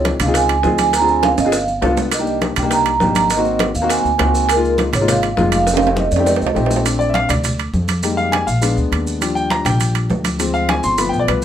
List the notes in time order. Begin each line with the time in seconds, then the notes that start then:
Already playing: C#2 C4 D#4 F4 G#4
0.05 high bongo, high conga, high timbale, maracas
0.20 C#2 F5, high conga, low conga, high timbale, maracas
0.26 C4 D#4 F4 G#4
0.34 G#5, high bongo, high conga, high timbale, maracas
0.49 high conga, high timbale, maracas
0.63 D2 C4 D#4 F4 G#4, high bongo, low bongo, high conga, maracas
0.78 G#5, high conga, high timbale, maracas
0.93 A#5, high bongo, high conga, high timbale, maracas
1.00 C4 D4 F4 G#4
1.08 G#5, high bongo, high conga, maracas
1.23 F5, high bongo, high conga, high timbale, maracas
1.38 G1 D#5, high bongo, high conga, high timbale, maracas
1.45 C4 D4 F4 G#4
1.52 high bongo, high conga, maracas
1.67 high conga, maracas
1.82 C2 B3 D4 F4 A4, high bongo, low bongo, high conga, low timbale, maracas
1.97 high bongo, high conga, low timbale, maracas
2.12 D#5, high bongo, high conga, high timbale, maracas
2.18 A#3 D4 D#4 G4
2.27 high conga, maracas
2.41 high bongo, high conga, high timbale, maracas
2.56 C2 G5, high conga, low conga, high timbale, maracas
2.63 A#3 D4 D#4 G4
2.71 A#5, high bongo, high conga, high timbale, maracas
2.86 high conga, high timbale, maracas
3.00 G#1 A#3 D4 D#4 G4, high bongo, low bongo, high conga, maracas
3.15 A#5, high conga, high timbale, maracas
3.30 D#5, high bongo, high timbale, maracas
3.37 A#3 C4 D#4 F#4
3.45 high bongo, high conga, maracas
3.59 high bongo, high conga, high timbale, maracas
3.74 D#2 F5, high bongo, high conga, maracas
3.82 A#3 C4 D#4 F#4
3.89 G#5, high bongo, high conga, high timbale, maracas
4.04 D2, high conga, maracas
4.18 C#2 A#3 C4 D#4 F#4, high bongo, low bongo, high conga, high timbale, low timbale, maracas
4.34 G#5, high bongo, high conga, maracas
4.48 A#4, high bongo, high conga, high timbale, maracas
4.55 G#3 A#3 D#4 F4
4.63 high conga, maracas
4.78 high bongo, high conga, high timbale, maracas
4.93 G#1 C#5, high conga, low conga, high timbale, maracas
5.01 G#3 A#3 D#4 F4
5.08 F5, high bongo, high conga, low conga, high timbale, maracas
5.23 high conga, high timbale, maracas
5.37 F1 G#3 A#3 D#4 F4, high bongo, low bongo, high conga, maracas
5.52 F5, high conga, high timbale, maracas
5.67 high bongo, high conga, high timbale, maracas
5.73 A3 C4 D#4 G4, high timbale
5.82 high bongo, high conga, maracas
5.87 high timbale
5.96 D#5, high bongo, high conga, maracas
6.11 F2 D5, high bongo, high conga, maracas
6.16 A3 C4 D#4 G4, high timbale
6.26 D#5, high bongo, high conga, low timbale, maracas
6.36 high conga, low timbale
6.41 C2, maracas
6.47 low timbale
6.55 A#1 A3 C4 D#4 G4, high conga, low timbale, maracas
6.66 high conga, low timbale
6.70 low bongo, maracas
6.76 low timbale
6.84 A3 C4 D4, high conga, high timbale, maracas
6.99 D5, high conga, maracas
7.10 E5
7.14 F5, high conga, high timbale, maracas
7.29 D2 D5, high conga, low conga, high timbale, maracas
7.44 high conga, low conga, high timbale, maracas
7.58 high conga, high timbale, maracas
7.74 F2, high conga, maracas
7.88 high conga, high timbale, maracas
8.03 G3 G#3 A#3 D#4, high conga, high timbale, maracas
8.17 F5, high conga, maracas
8.32 G#5, high conga, high timbale, maracas
8.47 A#1 F5, high conga, maracas
8.61 G#3 B3 D4, high conga, high timbale, maracas
8.76 D2, high conga, maracas
8.92 D#2, high conga, high timbale, maracas
9.06 high conga, maracas
9.21 F3 G3 D4, high conga, high timbale, maracas
9.35 G5, high conga, maracas
9.50 A#5, high conga, high timbale, maracas
9.65 A#1 G5, high conga, low conga, high timbale, maracas
9.80 high conga, high timbale, maracas
9.95 high conga, high timbale, maracas
10.10 D2, high conga, low timbale, maracas
10.24 high conga, high timbale, maracas
10.39 F3 G#3 C4, high conga, high timbale, maracas
10.54 F5, high conga, maracas
10.69 G#5, high conga, high timbale, maracas
10.83 G1 C6, high conga, maracas
10.98 F3 A3 B3 B5, high conga, high timbale, maracas
11.09 G5, high conga
11.13 B1, maracas
11.20 D5
11.28 C2 B4, high conga, high timbale, maracas